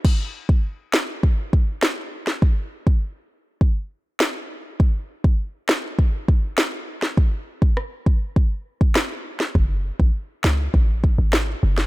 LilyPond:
<<
  \new Staff \with { instrumentName = "808-style bass" } { \clef bass \time 4/4 \key fis \minor \tempo 4 = 101 r1 | r1 | r1 | r1 |
fis,,8. a,,16 r8 cis,8 a,,8. gis,,8. fis,,8 | }
  \new DrumStaff \with { instrumentName = "Drums" } \drummode { \time 4/4 <cymc bd>8. bd16 r8 sn8 bd8 bd8 sn8. sn16 | bd8. bd16 r4 bd4 sn4 | bd8. bd16 r8 sn8 bd8 bd8 sn8. sn16 | bd8. bd16 ss8 bd8 bd8. bd16 <ss sn>8. sn16 |
bd8. bd16 r8 sn8 bd8 bd8 sn8. sn16 | }
>>